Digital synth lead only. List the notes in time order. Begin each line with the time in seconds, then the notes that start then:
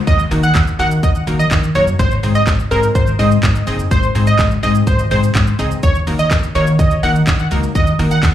0.07 D#5
0.43 F#5
0.79 F#5
1.03 D#5
1.39 D#5
1.75 C#5
1.99 C5
2.35 D#5
2.71 A#4
2.95 C5
3.19 D#5
3.91 C5
4.27 D#5
4.63 D#5
4.87 C5
5.11 C5
5.83 C#5
6.19 D#5
6.55 C#5
6.79 D#5
7.03 F#5
7.75 D#5
8.11 F#5